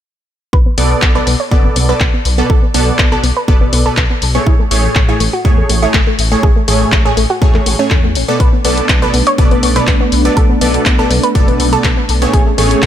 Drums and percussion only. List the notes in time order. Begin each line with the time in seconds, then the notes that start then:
0.53 kick
0.78 open hi-hat
1.02 kick, clap
1.27 open hi-hat
1.51 kick
1.76 open hi-hat
2.00 kick, clap
2.25 open hi-hat
2.50 kick
2.74 open hi-hat
2.99 kick, clap
3.24 open hi-hat
3.48 kick
3.73 open hi-hat
3.97 kick, clap
4.22 open hi-hat
4.47 kick
4.71 open hi-hat
4.95 kick, clap
5.20 open hi-hat
5.45 kick
5.70 open hi-hat
5.94 kick, clap
6.19 open hi-hat
6.43 kick
6.68 open hi-hat
6.92 kick, clap
7.17 open hi-hat
7.42 kick
7.54 clap
7.66 open hi-hat
7.90 kick, clap
8.15 open hi-hat
8.40 kick, closed hi-hat
8.65 open hi-hat
8.78 closed hi-hat
8.89 kick, clap, closed hi-hat
9.14 open hi-hat
9.27 closed hi-hat
9.38 kick, closed hi-hat
9.51 closed hi-hat
9.63 open hi-hat
9.76 closed hi-hat
9.87 kick, clap, closed hi-hat
10.12 open hi-hat
10.25 closed hi-hat
10.37 kick, closed hi-hat
10.61 open hi-hat
10.74 closed hi-hat
10.86 kick, clap, closed hi-hat
11.11 open hi-hat
11.23 closed hi-hat
11.35 kick, closed hi-hat
11.48 closed hi-hat
11.60 open hi-hat
11.73 closed hi-hat
11.84 kick, clap, closed hi-hat
12.09 open hi-hat
12.22 closed hi-hat
12.33 kick, closed hi-hat
12.58 open hi-hat
12.71 closed hi-hat
12.82 kick, clap, closed hi-hat